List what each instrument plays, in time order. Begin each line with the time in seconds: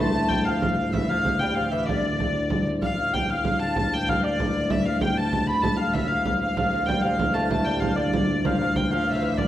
Already playing: harmonium D2 A2, hurdy-gurdy A5
0.00 lute A3, recorder A5
0.15 lute A3
0.28 hurdy-gurdy G5, frame drum
0.44 lute F3, hurdy-gurdy F5
0.49 recorder F5
0.62 frame drum
0.78 frame drum
0.93 lute E3, recorder E5, hurdy-gurdy E5, frame drum
1.08 lute F3, recorder F5, hurdy-gurdy F5
1.25 lute F3, frame drum
1.39 lute G3, hurdy-gurdy G5, recorder G5
1.55 lute F3, hurdy-gurdy F5, recorder F5
1.71 lute E3, recorder E5, hurdy-gurdy E5, frame drum
1.86 lute D3, hurdy-gurdy D5, recorder D5, frame drum
2.05 frame drum
2.20 frame drum
2.35 frame drum
2.50 frame drum
2.82 harmonium D2 A2, hurdy-gurdy F5, recorder F5, frame drum
2.98 recorder F5, frame drum
3.13 recorder G5, hurdy-gurdy G5, frame drum
3.30 hurdy-gurdy F5, recorder F5
3.45 frame drum
3.59 hurdy-gurdy A5
3.76 hurdy-gurdy A5, recorder A5, frame drum
3.93 hurdy-gurdy G5, frame drum
4.07 recorder F5, hurdy-gurdy F5, frame drum
4.23 recorder D5, hurdy-gurdy D5
4.40 frame drum
4.70 hurdy-gurdy E5, recorder E5, frame drum
4.85 hurdy-gurdy F5, recorder F5, frame drum
5.01 hurdy-gurdy G5, recorder G5, frame drum
5.17 hurdy-gurdy A5, recorder A5
5.33 recorder A5, frame drum
5.47 hurdy-gurdy B5, recorder B5
5.62 hurdy-gurdy A5, recorder A5, frame drum
5.77 hurdy-gurdy F5, recorder F5
5.94 hurdy-gurdy E5, recorder E5, frame drum
6.07 hurdy-gurdy F5, recorder F5
6.25 frame drum
6.40 hurdy-gurdy F5, recorder F5, frame drum
6.55 harmonium D2 A2, lute F3, hurdy-gurdy F5, recorder F5, frame drum
6.73 lute F3, frame drum
6.86 lute G3, hurdy-gurdy G5, recorder G5, frame drum
7.01 lute F3, hurdy-gurdy F5, recorder F5
7.19 frame drum
7.34 lute A3, hurdy-gurdy A5
7.49 lute A3, hurdy-gurdy A5, recorder A5, frame drum
7.64 lute G3, hurdy-gurdy G5, frame drum
7.80 lute F3, hurdy-gurdy F5, frame drum
7.96 lute D3, hurdy-gurdy D5, recorder D5
8.13 frame drum
8.45 lute F3, hurdy-gurdy F5, recorder F5, frame drum
8.60 lute F3, recorder F5, frame drum
8.76 hurdy-gurdy G5, frame drum
8.91 lute F3, hurdy-gurdy F5, recorder F5
9.06 lute F3, recorder F5, hurdy-gurdy F5
9.10 hurdy-gurdy E5 F5, recorder F5
9.16 lute F3
9.22 lute E3, hurdy-gurdy E5
9.37 lute D3, recorder D5, hurdy-gurdy D5, frame drum